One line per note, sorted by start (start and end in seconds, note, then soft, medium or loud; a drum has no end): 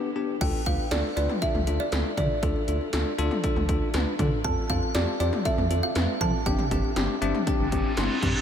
0.00 0.12 B4 medium
0.16 0.35 B3 medium
0.16 0.35 D4 medium
0.16 0.35 G4 medium
0.41 0.52 D2 loud
0.41 0.60 D4 medium
0.41 0.60 F4 medium
0.41 0.60 A4 loud
0.41 0.67 G5 loud
0.41 kick loud
0.41 closed hi-hat medium
0.41 crash loud
0.66 0.77 D2 medium
0.66 0.85 D4 medium
0.66 0.85 F4 medium
0.66 0.85 B4 medium
0.66 0.78 F5 loud
0.66 kick medium
0.66 closed hi-hat medium
0.91 1.02 D2 loud
0.91 1.10 D4 medium
0.91 1.10 F4 medium
0.91 1.11 A4 loud
0.91 1.03 D5 loud
0.91 snare loud
0.91 closed hi-hat medium
1.17 1.28 D2 loud
1.17 1.36 D4 medium
1.17 1.36 F4 medium
1.17 1.36 B4 loud
1.17 1.43 D5 loud
1.17 closed hi-hat medium
1.29 mid tom medium
1.42 1.61 D4 medium
1.42 1.61 F4 medium
1.42 1.61 A4 medium
1.42 1.81 E5 loud
1.42 kick medium
1.42 closed hi-hat medium
1.55 1.65 D2 medium
1.55 mid tom medium
1.67 1.78 D2 loud
1.67 1.86 D4 medium
1.67 1.86 F4 medium
1.67 1.86 A4 medium
1.67 closed hi-hat medium
1.80 2.15 D5 medium
1.92 2.03 D2 loud
1.92 2.11 D4 medium
1.92 2.11 F4 medium
1.92 2.11 A4 medium
1.92 snare loud
1.92 closed hi-hat medium
2.17 2.28 D3 loud
2.17 2.37 D4 medium
2.17 2.37 F4 medium
2.17 2.37 A4 medium
2.17 2.41 D5 medium
2.17 kick medium
2.17 closed hi-hat medium
2.17 mid tom medium
2.43 2.54 D2 loud
2.43 2.62 D4 loud
2.43 2.62 F4 medium
2.43 2.62 A4 loud
2.43 4.15 A4 medium
2.43 kick loud
2.43 closed hi-hat medium
2.68 2.79 D2 loud
2.68 2.87 D4 medium
2.68 2.87 F4 medium
2.68 2.87 A4 medium
2.68 closed hi-hat medium
2.93 3.04 D2 loud
2.93 3.12 D4 medium
2.93 3.12 F4 medium
2.93 3.12 A4 loud
2.93 snare loud
2.93 closed hi-hat medium
3.18 3.29 D2 loud
3.18 3.37 D4 loud
3.18 3.37 F4 loud
3.18 3.37 A4 loud
3.18 closed hi-hat medium
3.31 mid tom medium
3.44 3.63 D4 medium
3.44 3.63 F4 medium
3.44 3.63 A4 loud
3.44 kick medium
3.44 closed hi-hat medium
3.56 3.67 D2 loud
3.56 mid tom medium
3.69 3.80 D2 loud
3.69 3.88 D4 medium
3.69 3.88 F4 medium
3.69 3.88 A4 loud
3.69 kick loud
3.69 closed hi-hat medium
3.94 4.05 D2 loud
3.94 4.13 D4 medium
3.94 4.13 F4 medium
3.94 4.13 B4 loud
3.94 snare loud
3.94 closed hi-hat medium
4.19 4.30 D3 loud
4.19 4.38 D4 medium
4.19 4.38 F4 medium
4.19 4.38 A4 loud
4.19 kick medium
4.19 closed hi-hat medium
4.19 mid tom medium
4.44 4.55 F2 loud
4.44 4.63 C4 medium
4.44 4.63 F4 medium
4.44 4.63 A4 loud
4.44 4.70 A5 loud
4.44 kick loud
4.44 closed hi-hat medium
4.70 4.80 F2 loud
4.70 4.89 C4 medium
4.70 4.89 F4 medium
4.70 4.89 A4 medium
4.70 4.96 F5 loud
4.70 kick medium
4.70 closed hi-hat medium
4.95 5.06 F2 loud
4.95 5.14 C4 loud
4.95 5.14 F4 medium
4.95 5.14 G4 loud
4.95 5.19 D5 medium
4.95 snare loud
4.95 closed hi-hat medium
5.20 5.31 F2 loud
5.20 5.39 C4 loud
5.20 5.39 F4 medium
5.20 5.39 G4 loud
5.20 5.46 D5 medium
5.20 closed hi-hat medium
5.33 mid tom medium
5.45 5.64 C4 medium
5.45 5.64 F4 medium
5.45 5.64 A4 medium
5.45 5.81 E5 loud
5.45 kick medium
5.45 closed hi-hat medium
5.58 5.69 F2 loud
5.58 mid tom medium
5.70 5.81 F2 medium
5.70 5.90 C4 medium
5.70 5.90 F4 medium
5.70 5.90 A4 medium
5.70 closed hi-hat medium
5.83 6.18 F5 medium
5.95 6.06 F2 loud
5.95 6.15 C4 medium
5.95 6.15 F4 medium
5.95 6.15 B4 medium
5.95 snare loud
5.95 closed hi-hat medium
6.21 6.32 F3 loud
6.21 6.40 C4 medium
6.21 6.40 F4 medium
6.21 6.40 A4 medium
6.21 6.44 A5 loud
6.21 kick medium
6.21 closed hi-hat medium
6.21 mid tom medium
6.46 6.57 G1 loud
6.46 6.65 C4 loud
6.46 6.65 D4 medium
6.46 6.65 G4 loud
6.46 8.19 G5 medium
6.46 kick loud
6.46 closed hi-hat medium
6.58 mid tom medium
6.71 6.82 G1 loud
6.71 6.90 C4 medium
6.71 6.90 D4 medium
6.71 6.90 G4 medium
6.71 kick loud
6.71 closed hi-hat medium
6.96 7.07 G1 loud
6.96 7.16 C4 loud
6.96 7.16 D4 medium
6.96 7.16 G4 loud
6.96 snare loud
6.96 closed hi-hat medium
7.22 7.33 G1 loud
7.22 7.41 C4 loud
7.22 7.41 D4 loud
7.22 7.41 G4 loud
7.22 7.45 E5 medium
7.22 closed hi-hat medium
7.35 mid tom medium
7.47 7.66 C4 medium
7.47 7.66 D4 medium
7.47 7.66 G4 loud
7.47 7.94 G5 medium
7.47 kick medium
7.47 closed hi-hat medium
7.47 reverse cymbal medium
7.60 7.70 G1 loud
7.72 7.83 G1 loud
7.72 7.91 C4 medium
7.72 7.91 D4 medium
7.72 7.91 G4 loud
7.72 kick medium
7.72 closed hi-hat medium
7.97 8.08 G1 loud
7.97 8.16 C4 medium
7.97 8.16 D4 medium
7.97 8.16 E4 loud
7.97 8.41 C6 medium
7.97 snare loud
7.97 closed hi-hat medium
8.23 8.33 G2 loud
8.23 8.41 C4 medium
8.23 8.41 D4 medium
8.23 8.41 G4 loud
8.23 kick medium
8.23 closed hi-hat medium
8.23 mid tom medium